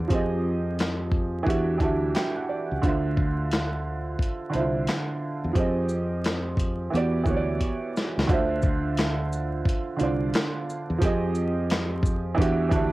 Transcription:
Already playing: D3 D4 F4 C5 D5
0.08 F2 F3 C4 G4, kick, closed hi-hat
0.13 G#4 D#5
0.79 snare, clap, closed hi-hat
1.12 kick
1.43 E2 E3 D4 F#4, kick
1.48 G4 E5, closed hi-hat
1.78 D2 E3 D4 F#4 A5, kick, closed hi-hat
1.83 G4 E5
2.15 G5, snare, clap, closed hi-hat
2.36 F#5
2.49 D5
2.71 C#2
2.82 D2 D3 D4 F4, kick, closed hi-hat
2.87 C5 E5
3.17 kick
3.52 snare, clap, closed hi-hat
4.19 kick, closed hi-hat
4.50 D3 D4 E4, closed hi-hat
4.54 C2 C5 E5
4.60 F4
4.87 snare, clap, closed hi-hat
5.44 E2
5.53 F2 F3 C4 G4, kick, closed hi-hat
5.58 G#4 D#5
5.89 shaker
6.24 snare, clap, closed hi-hat
6.57 kick, closed hi-hat, shaker
6.90 E2 E3 B3 F#4
6.95 G4 D5, closed hi-hat
7.24 D2 E3 B3 F#4, kick, shaker
7.28 G4 C#5
7.36 D5
7.61 kick, closed hi-hat
7.96 snare, shaker
8.17 C#2, snare
8.27 D2 D3 D4 F4, kick, closed hi-hat
8.32 C5 E5
8.62 kick, shaker
8.97 snare, clap, closed hi-hat
9.33 shaker
9.65 kick, closed hi-hat
9.96 D3 D4 F4, closed hi-hat, shaker
10.01 C2 C5 D5
10.34 snare, clap, closed hi-hat
10.70 shaker
10.90 E2
10.98 F2 F3 C4 G4, kick, closed hi-hat
11.03 G#4 D#5
11.35 shaker
11.70 snare, clap, closed hi-hat
12.03 kick, shaker
12.34 E2 E3 D4 F#4, kick
12.39 G4 E5, closed hi-hat
12.69 D2 E3 D4 F#4 A5, kick, closed hi-hat, shaker
12.74 G4 E5

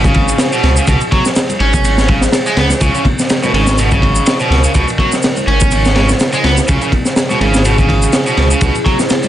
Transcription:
Already playing: G#1 C#3 C#4 E4 G#4
0.04 C#3, kick, high conga, low conga, shaker
0.14 kick, ride
0.28 ride, shaker
0.38 snare, ride, shaker
0.52 B2, shaker
0.63 C#2, snare, ride
0.77 C#3, shaker
0.87 C#2 B2, kick, ride, shaker
1.01 ride, shaker
1.12 F#3, kick, ride, high conga
1.25 snare, shaker
1.36 snare, ride, shaker
1.49 ride, low conga, shaker
1.60 G#1 C#4, ride
1.74 kick, high conga, shaker
1.84 ride, shaker
1.98 snare, high conga, shaker
2.08 C#3, kick, ride, low conga
2.21 snare, shaker
2.32 snare, ride, shaker
2.46 G#3, shaker
2.57 C#2 B3, snare, ride
2.70 snare, shaker
2.81 C#2 C#3 A#4, kick, ride, shaker
2.94 C#3, ride, shaker
3.05 kick, ride, high conga
3.19 snare, shaker
3.29 snare, ride, shaker
3.43 B2, low conga, shaker
3.53 G#1 C#3, ride
3.67 snare, high conga, shaker
3.78 B2, ride, shaker
3.91 C#3, kick, high conga, low conga, shaker
4.02 kick, ride
4.15 ride, shaker
4.26 snare, ride, shaker
4.40 B2, shaker
4.50 C#2, snare, ride
4.64 C#3, shaker
4.75 C#2 B2, kick, ride, shaker
4.88 ride, shaker
4.98 F#3, kick, ride, high conga
5.12 snare, shaker
5.22 snare, ride, shaker
5.36 ride, low conga, shaker
5.47 G#1 C#4, ride
5.60 kick, high conga, shaker
5.71 ride, shaker
5.85 snare, high conga, shaker
5.95 C#3, snare, ride, low conga
6.09 snare, shaker
6.20 snare, ride, shaker
6.33 G#3, shaker
6.44 C#2 B3, snare, ride
6.57 snare, shaker
6.68 C#2 C#3 G#4, kick, ride, shaker
6.81 C#3, ride, shaker
6.92 kick, ride, high conga
7.05 snare, shaker
7.16 snare, ride, shaker
7.30 B2, low conga, shaker
7.40 G#1 C#3, ride
7.54 snare, high conga, shaker
7.65 B2, ride, shaker
7.78 C#3, kick, high conga, low conga, shaker
7.89 kick, ride
8.02 ride, shaker
8.13 snare, ride, shaker
8.27 B2, shaker
8.37 C#2, snare, ride
8.51 C#3, shaker
8.61 C#2 B2, kick, ride, shaker
8.75 ride, shaker
8.85 F#3, kick, ride, high conga
8.99 snare, shaker
9.10 snare, ride, shaker
9.23 ride, low conga, shaker

